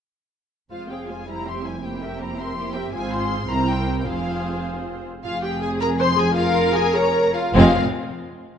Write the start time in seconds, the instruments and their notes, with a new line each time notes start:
0.70 double bass section F1, cello section F2, viola section G#3 F4, violin section F4 C5 F5
0.89 viola section C4 G#4, violin section G#4 F5 G5
1.08 viola section G#3 F4, violin section F4 C5 G#5
1.26 viola section G3 E4, violin section E4 C5 A#5
1.45 viola section C4 G4, violin section G4 E5 C6
1.64 viola section G3 E4, violin section E4 C5 G#5
1.82 viola section A#3 E4, violin section G4 C5 G5
2.01 viola section C4 G4, violin section A#4 E5
2.19 viola section A#3 E4, violin section G4 C5 A#5
2.37 viola section C4 G4, violin section A#4 E5 C6
2.56 viola section A#3 E4, violin section G4 C5
2.74 viola section C4 G4, violin section A#4 E5 G5
2.93 double bass section G#1, cello section G#2, viola section C4 F4, violin section G#4 C5 G#5
3.12 violin section C6
3.48 double bass section C2, cello section C3, viola section C4 E4, violin section A#4 C5 A#5
3.69 violin section G5
4.00 violin section G5
4.06 double bass section F1, cello section F2, viola section C4 F4, violin section G#4 C5 F5
5.24 double bass section F1, cello section F2, viola section F4, violin section G#4 F5
5.44 viola section G4, violin section G5
5.62 viola section G#4, violin section G#5
5.80 viola section A#4, violin section A#5
5.99 viola section C5, violin section C6
6.17 viola section G#4, violin section G#5
6.36 viola section F4, violin section A#4 F5
6.74 viola section G#4, violin section G#5
6.95 viola section A#4, violin section C#5 A#5
7.36 viola section F4, violin section F5
7.56 double bass section F1, cello section F2, violin section G#3 C4 F5, viola section F4